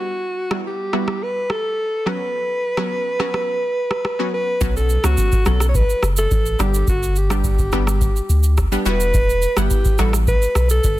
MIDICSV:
0, 0, Header, 1, 5, 480
1, 0, Start_track
1, 0, Key_signature, 2, "minor"
1, 0, Tempo, 566038
1, 70, Time_signature, 4, 2, 24, 8
1, 9325, End_track
2, 0, Start_track
2, 0, Title_t, "Alto saxophone"
2, 0, Program_c, 0, 65
2, 0, Note_on_c, 0, 66, 91
2, 522, Note_off_c, 0, 66, 0
2, 565, Note_on_c, 0, 67, 95
2, 1042, Note_on_c, 0, 71, 108
2, 1055, Note_off_c, 0, 67, 0
2, 1281, Note_on_c, 0, 69, 107
2, 1293, Note_off_c, 0, 71, 0
2, 1763, Note_on_c, 0, 71, 106
2, 1775, Note_off_c, 0, 69, 0
2, 3673, Note_off_c, 0, 71, 0
2, 3678, Note_on_c, 0, 71, 107
2, 4014, Note_off_c, 0, 71, 0
2, 4040, Note_on_c, 0, 69, 100
2, 4261, Note_off_c, 0, 69, 0
2, 4284, Note_on_c, 0, 66, 101
2, 4610, Note_off_c, 0, 66, 0
2, 4637, Note_on_c, 0, 69, 96
2, 4804, Note_off_c, 0, 69, 0
2, 4824, Note_on_c, 0, 73, 81
2, 4879, Note_on_c, 0, 71, 107
2, 4892, Note_off_c, 0, 73, 0
2, 5135, Note_off_c, 0, 71, 0
2, 5243, Note_on_c, 0, 69, 106
2, 5601, Note_on_c, 0, 67, 96
2, 5613, Note_off_c, 0, 69, 0
2, 5836, Note_off_c, 0, 67, 0
2, 5841, Note_on_c, 0, 66, 93
2, 6086, Note_on_c, 0, 67, 87
2, 6098, Note_off_c, 0, 66, 0
2, 7290, Note_off_c, 0, 67, 0
2, 7520, Note_on_c, 0, 71, 125
2, 8122, Note_on_c, 0, 67, 106
2, 8135, Note_off_c, 0, 71, 0
2, 8474, Note_off_c, 0, 67, 0
2, 8478, Note_on_c, 0, 69, 98
2, 8584, Note_off_c, 0, 69, 0
2, 8717, Note_on_c, 0, 71, 112
2, 9053, Note_off_c, 0, 71, 0
2, 9079, Note_on_c, 0, 69, 109
2, 9325, Note_off_c, 0, 69, 0
2, 9325, End_track
3, 0, Start_track
3, 0, Title_t, "Synth pluck"
3, 0, Program_c, 1, 84
3, 432, Note_on_c, 1, 55, 74
3, 434, Note_on_c, 1, 59, 67
3, 436, Note_on_c, 1, 64, 69
3, 437, Note_on_c, 1, 66, 79
3, 761, Note_off_c, 1, 55, 0
3, 762, Note_off_c, 1, 59, 0
3, 763, Note_off_c, 1, 64, 0
3, 764, Note_off_c, 1, 66, 0
3, 788, Note_on_c, 1, 55, 75
3, 790, Note_on_c, 1, 59, 70
3, 791, Note_on_c, 1, 64, 70
3, 793, Note_on_c, 1, 66, 88
3, 1011, Note_off_c, 1, 55, 0
3, 1012, Note_off_c, 1, 59, 0
3, 1013, Note_off_c, 1, 64, 0
3, 1013, Note_off_c, 1, 66, 0
3, 1747, Note_on_c, 1, 54, 78
3, 1749, Note_on_c, 1, 59, 68
3, 1750, Note_on_c, 1, 61, 66
3, 1752, Note_on_c, 1, 66, 82
3, 1879, Note_off_c, 1, 54, 0
3, 1880, Note_off_c, 1, 59, 0
3, 1880, Note_off_c, 1, 61, 0
3, 1882, Note_off_c, 1, 66, 0
3, 2352, Note_on_c, 1, 54, 72
3, 2354, Note_on_c, 1, 59, 67
3, 2356, Note_on_c, 1, 61, 67
3, 2358, Note_on_c, 1, 66, 81
3, 2681, Note_off_c, 1, 54, 0
3, 2682, Note_off_c, 1, 59, 0
3, 2683, Note_off_c, 1, 61, 0
3, 2684, Note_off_c, 1, 66, 0
3, 2708, Note_on_c, 1, 54, 76
3, 2709, Note_on_c, 1, 59, 69
3, 2712, Note_on_c, 1, 61, 68
3, 2713, Note_on_c, 1, 66, 83
3, 2931, Note_off_c, 1, 54, 0
3, 2932, Note_off_c, 1, 59, 0
3, 2933, Note_off_c, 1, 61, 0
3, 2933, Note_off_c, 1, 66, 0
3, 3554, Note_on_c, 1, 54, 75
3, 3556, Note_on_c, 1, 59, 66
3, 3558, Note_on_c, 1, 61, 65
3, 3560, Note_on_c, 1, 66, 83
3, 3676, Note_off_c, 1, 54, 0
3, 3677, Note_off_c, 1, 59, 0
3, 3678, Note_off_c, 1, 61, 0
3, 3679, Note_off_c, 1, 66, 0
3, 3908, Note_on_c, 1, 54, 100
3, 3910, Note_on_c, 1, 59, 87
3, 3912, Note_on_c, 1, 61, 91
3, 3914, Note_on_c, 1, 66, 107
3, 4244, Note_off_c, 1, 54, 0
3, 4245, Note_off_c, 1, 59, 0
3, 4246, Note_off_c, 1, 61, 0
3, 4247, Note_off_c, 1, 66, 0
3, 4273, Note_on_c, 1, 54, 75
3, 4275, Note_on_c, 1, 59, 68
3, 4276, Note_on_c, 1, 61, 69
3, 4278, Note_on_c, 1, 66, 83
3, 4602, Note_off_c, 1, 54, 0
3, 4603, Note_off_c, 1, 59, 0
3, 4603, Note_off_c, 1, 61, 0
3, 4604, Note_off_c, 1, 66, 0
3, 4629, Note_on_c, 1, 54, 80
3, 4631, Note_on_c, 1, 59, 73
3, 4633, Note_on_c, 1, 61, 73
3, 4634, Note_on_c, 1, 66, 87
3, 4851, Note_off_c, 1, 54, 0
3, 4852, Note_off_c, 1, 59, 0
3, 4854, Note_off_c, 1, 61, 0
3, 4854, Note_off_c, 1, 66, 0
3, 5590, Note_on_c, 1, 55, 77
3, 5592, Note_on_c, 1, 59, 69
3, 5594, Note_on_c, 1, 62, 71
3, 5596, Note_on_c, 1, 67, 85
3, 5721, Note_off_c, 1, 55, 0
3, 5721, Note_off_c, 1, 59, 0
3, 5722, Note_off_c, 1, 62, 0
3, 5723, Note_off_c, 1, 67, 0
3, 6195, Note_on_c, 1, 55, 77
3, 6196, Note_on_c, 1, 59, 69
3, 6198, Note_on_c, 1, 62, 70
3, 6199, Note_on_c, 1, 67, 83
3, 6523, Note_off_c, 1, 55, 0
3, 6523, Note_off_c, 1, 59, 0
3, 6524, Note_off_c, 1, 62, 0
3, 6525, Note_off_c, 1, 67, 0
3, 6552, Note_on_c, 1, 55, 81
3, 6553, Note_on_c, 1, 59, 76
3, 6554, Note_on_c, 1, 62, 75
3, 6556, Note_on_c, 1, 67, 90
3, 6773, Note_off_c, 1, 55, 0
3, 6773, Note_off_c, 1, 59, 0
3, 6774, Note_off_c, 1, 62, 0
3, 6775, Note_off_c, 1, 67, 0
3, 7393, Note_on_c, 1, 55, 76
3, 7395, Note_on_c, 1, 59, 73
3, 7398, Note_on_c, 1, 62, 72
3, 7399, Note_on_c, 1, 67, 85
3, 7499, Note_off_c, 1, 55, 0
3, 7501, Note_off_c, 1, 59, 0
3, 7509, Note_on_c, 1, 55, 95
3, 7511, Note_on_c, 1, 59, 88
3, 7513, Note_on_c, 1, 64, 86
3, 7514, Note_on_c, 1, 66, 105
3, 7518, Note_off_c, 1, 62, 0
3, 7518, Note_off_c, 1, 67, 0
3, 7731, Note_off_c, 1, 55, 0
3, 7732, Note_off_c, 1, 59, 0
3, 7733, Note_off_c, 1, 64, 0
3, 7734, Note_off_c, 1, 66, 0
3, 8115, Note_on_c, 1, 55, 77
3, 8117, Note_on_c, 1, 59, 71
3, 8118, Note_on_c, 1, 64, 72
3, 8119, Note_on_c, 1, 78, 84
3, 8443, Note_off_c, 1, 55, 0
3, 8444, Note_off_c, 1, 59, 0
3, 8444, Note_off_c, 1, 64, 0
3, 8445, Note_off_c, 1, 78, 0
3, 8470, Note_on_c, 1, 55, 81
3, 8472, Note_on_c, 1, 59, 74
3, 8474, Note_on_c, 1, 64, 76
3, 8476, Note_on_c, 1, 66, 91
3, 8692, Note_off_c, 1, 55, 0
3, 8693, Note_off_c, 1, 59, 0
3, 8694, Note_off_c, 1, 64, 0
3, 8695, Note_off_c, 1, 66, 0
3, 9325, End_track
4, 0, Start_track
4, 0, Title_t, "Sub bass"
4, 0, Program_c, 2, 38
4, 3910, Note_on_c, 2, 35, 112
4, 4221, Note_off_c, 2, 35, 0
4, 4275, Note_on_c, 2, 37, 92
4, 4373, Note_off_c, 2, 37, 0
4, 4632, Note_on_c, 2, 35, 99
4, 4942, Note_off_c, 2, 35, 0
4, 5112, Note_on_c, 2, 30, 101
4, 5316, Note_off_c, 2, 30, 0
4, 5352, Note_on_c, 2, 33, 95
4, 5556, Note_off_c, 2, 33, 0
4, 5593, Note_on_c, 2, 31, 97
4, 5797, Note_off_c, 2, 31, 0
4, 5830, Note_on_c, 2, 31, 116
4, 6517, Note_off_c, 2, 31, 0
4, 6552, Note_on_c, 2, 31, 92
4, 6862, Note_off_c, 2, 31, 0
4, 7032, Note_on_c, 2, 38, 93
4, 7342, Note_off_c, 2, 38, 0
4, 7511, Note_on_c, 2, 28, 104
4, 8026, Note_off_c, 2, 28, 0
4, 8118, Note_on_c, 2, 31, 87
4, 8215, Note_off_c, 2, 31, 0
4, 8471, Note_on_c, 2, 33, 102
4, 8781, Note_off_c, 2, 33, 0
4, 8951, Note_on_c, 2, 35, 100
4, 9155, Note_off_c, 2, 35, 0
4, 9193, Note_on_c, 2, 31, 89
4, 9325, Note_off_c, 2, 31, 0
4, 9325, End_track
5, 0, Start_track
5, 0, Title_t, "Drums"
5, 432, Note_on_c, 9, 37, 109
5, 517, Note_off_c, 9, 37, 0
5, 790, Note_on_c, 9, 37, 94
5, 875, Note_off_c, 9, 37, 0
5, 913, Note_on_c, 9, 37, 86
5, 998, Note_off_c, 9, 37, 0
5, 1271, Note_on_c, 9, 37, 83
5, 1356, Note_off_c, 9, 37, 0
5, 1756, Note_on_c, 9, 37, 95
5, 1840, Note_off_c, 9, 37, 0
5, 2352, Note_on_c, 9, 37, 112
5, 2437, Note_off_c, 9, 37, 0
5, 2712, Note_on_c, 9, 37, 94
5, 2797, Note_off_c, 9, 37, 0
5, 2832, Note_on_c, 9, 37, 89
5, 2917, Note_off_c, 9, 37, 0
5, 3313, Note_on_c, 9, 37, 84
5, 3398, Note_off_c, 9, 37, 0
5, 3432, Note_on_c, 9, 37, 84
5, 3517, Note_off_c, 9, 37, 0
5, 3911, Note_on_c, 9, 36, 109
5, 3913, Note_on_c, 9, 82, 81
5, 3996, Note_off_c, 9, 36, 0
5, 3998, Note_off_c, 9, 82, 0
5, 4043, Note_on_c, 9, 82, 52
5, 4128, Note_off_c, 9, 82, 0
5, 4150, Note_on_c, 9, 82, 54
5, 4235, Note_off_c, 9, 82, 0
5, 4272, Note_on_c, 9, 37, 124
5, 4277, Note_on_c, 9, 82, 93
5, 4357, Note_off_c, 9, 37, 0
5, 4362, Note_off_c, 9, 82, 0
5, 4390, Note_on_c, 9, 36, 82
5, 4390, Note_on_c, 9, 82, 78
5, 4474, Note_off_c, 9, 82, 0
5, 4475, Note_off_c, 9, 36, 0
5, 4513, Note_on_c, 9, 82, 57
5, 4514, Note_on_c, 9, 36, 98
5, 4597, Note_off_c, 9, 82, 0
5, 4599, Note_off_c, 9, 36, 0
5, 4625, Note_on_c, 9, 82, 59
5, 4630, Note_on_c, 9, 37, 105
5, 4710, Note_off_c, 9, 82, 0
5, 4715, Note_off_c, 9, 37, 0
5, 4752, Note_on_c, 9, 37, 94
5, 4760, Note_on_c, 9, 82, 102
5, 4836, Note_off_c, 9, 37, 0
5, 4845, Note_off_c, 9, 82, 0
5, 4872, Note_on_c, 9, 36, 108
5, 4875, Note_on_c, 9, 82, 73
5, 4956, Note_off_c, 9, 36, 0
5, 4959, Note_off_c, 9, 82, 0
5, 5000, Note_on_c, 9, 82, 63
5, 5085, Note_off_c, 9, 82, 0
5, 5110, Note_on_c, 9, 37, 93
5, 5115, Note_on_c, 9, 82, 59
5, 5195, Note_off_c, 9, 37, 0
5, 5200, Note_off_c, 9, 82, 0
5, 5231, Note_on_c, 9, 82, 112
5, 5316, Note_off_c, 9, 82, 0
5, 5353, Note_on_c, 9, 36, 92
5, 5353, Note_on_c, 9, 82, 72
5, 5438, Note_off_c, 9, 36, 0
5, 5438, Note_off_c, 9, 82, 0
5, 5477, Note_on_c, 9, 82, 63
5, 5562, Note_off_c, 9, 82, 0
5, 5592, Note_on_c, 9, 82, 60
5, 5596, Note_on_c, 9, 37, 97
5, 5677, Note_off_c, 9, 82, 0
5, 5681, Note_off_c, 9, 37, 0
5, 5718, Note_on_c, 9, 82, 89
5, 5803, Note_off_c, 9, 82, 0
5, 5831, Note_on_c, 9, 36, 114
5, 5832, Note_on_c, 9, 82, 84
5, 5915, Note_off_c, 9, 36, 0
5, 5917, Note_off_c, 9, 82, 0
5, 5963, Note_on_c, 9, 82, 56
5, 6048, Note_off_c, 9, 82, 0
5, 6070, Note_on_c, 9, 82, 51
5, 6155, Note_off_c, 9, 82, 0
5, 6193, Note_on_c, 9, 37, 121
5, 6198, Note_on_c, 9, 82, 95
5, 6278, Note_off_c, 9, 37, 0
5, 6283, Note_off_c, 9, 82, 0
5, 6311, Note_on_c, 9, 36, 85
5, 6311, Note_on_c, 9, 82, 76
5, 6396, Note_off_c, 9, 36, 0
5, 6396, Note_off_c, 9, 82, 0
5, 6435, Note_on_c, 9, 36, 100
5, 6435, Note_on_c, 9, 82, 54
5, 6519, Note_off_c, 9, 82, 0
5, 6520, Note_off_c, 9, 36, 0
5, 6548, Note_on_c, 9, 82, 55
5, 6553, Note_on_c, 9, 37, 101
5, 6633, Note_off_c, 9, 82, 0
5, 6637, Note_off_c, 9, 37, 0
5, 6675, Note_on_c, 9, 37, 92
5, 6683, Note_on_c, 9, 82, 106
5, 6760, Note_off_c, 9, 37, 0
5, 6768, Note_off_c, 9, 82, 0
5, 6793, Note_on_c, 9, 36, 109
5, 6797, Note_on_c, 9, 82, 73
5, 6878, Note_off_c, 9, 36, 0
5, 6882, Note_off_c, 9, 82, 0
5, 6922, Note_on_c, 9, 82, 60
5, 7007, Note_off_c, 9, 82, 0
5, 7036, Note_on_c, 9, 82, 62
5, 7120, Note_off_c, 9, 82, 0
5, 7153, Note_on_c, 9, 82, 107
5, 7238, Note_off_c, 9, 82, 0
5, 7273, Note_on_c, 9, 36, 88
5, 7273, Note_on_c, 9, 37, 88
5, 7273, Note_on_c, 9, 82, 76
5, 7357, Note_off_c, 9, 82, 0
5, 7358, Note_off_c, 9, 36, 0
5, 7358, Note_off_c, 9, 37, 0
5, 7396, Note_on_c, 9, 82, 62
5, 7481, Note_off_c, 9, 82, 0
5, 7510, Note_on_c, 9, 82, 58
5, 7595, Note_off_c, 9, 82, 0
5, 7637, Note_on_c, 9, 82, 97
5, 7722, Note_off_c, 9, 82, 0
5, 7751, Note_on_c, 9, 36, 110
5, 7752, Note_on_c, 9, 82, 83
5, 7835, Note_off_c, 9, 36, 0
5, 7837, Note_off_c, 9, 82, 0
5, 7882, Note_on_c, 9, 82, 54
5, 7967, Note_off_c, 9, 82, 0
5, 7990, Note_on_c, 9, 82, 56
5, 8074, Note_off_c, 9, 82, 0
5, 8112, Note_on_c, 9, 37, 120
5, 8117, Note_on_c, 9, 82, 96
5, 8197, Note_off_c, 9, 37, 0
5, 8202, Note_off_c, 9, 82, 0
5, 8230, Note_on_c, 9, 36, 83
5, 8230, Note_on_c, 9, 82, 79
5, 8315, Note_off_c, 9, 36, 0
5, 8315, Note_off_c, 9, 82, 0
5, 8353, Note_on_c, 9, 82, 55
5, 8354, Note_on_c, 9, 36, 99
5, 8438, Note_off_c, 9, 82, 0
5, 8439, Note_off_c, 9, 36, 0
5, 8466, Note_on_c, 9, 82, 61
5, 8471, Note_on_c, 9, 37, 104
5, 8551, Note_off_c, 9, 82, 0
5, 8556, Note_off_c, 9, 37, 0
5, 8592, Note_on_c, 9, 37, 90
5, 8600, Note_on_c, 9, 82, 105
5, 8677, Note_off_c, 9, 37, 0
5, 8685, Note_off_c, 9, 82, 0
5, 8712, Note_on_c, 9, 36, 104
5, 8714, Note_on_c, 9, 82, 76
5, 8796, Note_off_c, 9, 36, 0
5, 8798, Note_off_c, 9, 82, 0
5, 8839, Note_on_c, 9, 82, 60
5, 8924, Note_off_c, 9, 82, 0
5, 8949, Note_on_c, 9, 37, 93
5, 8954, Note_on_c, 9, 82, 61
5, 9034, Note_off_c, 9, 37, 0
5, 9039, Note_off_c, 9, 82, 0
5, 9070, Note_on_c, 9, 82, 109
5, 9155, Note_off_c, 9, 82, 0
5, 9192, Note_on_c, 9, 82, 74
5, 9193, Note_on_c, 9, 36, 93
5, 9277, Note_off_c, 9, 82, 0
5, 9278, Note_off_c, 9, 36, 0
5, 9325, End_track
0, 0, End_of_file